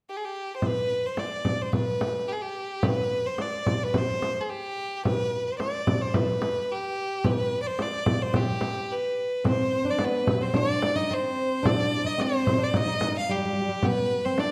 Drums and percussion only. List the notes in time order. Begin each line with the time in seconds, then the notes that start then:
0.62 frame drum
1.17 frame drum
1.45 frame drum
1.73 frame drum
2.01 frame drum
2.83 frame drum
3.38 frame drum
3.66 frame drum
3.94 frame drum
4.22 frame drum
5.05 frame drum
5.60 frame drum
5.87 frame drum
6.14 frame drum
6.42 frame drum
7.24 frame drum
7.79 frame drum
8.06 frame drum
8.34 frame drum
8.61 frame drum
9.45 frame drum
9.99 frame drum
10.27 frame drum
10.54 frame drum
10.82 frame drum
11.65 frame drum
12.20 frame drum
12.47 frame drum
12.74 frame drum
13.01 frame drum
13.83 frame drum
14.38 frame drum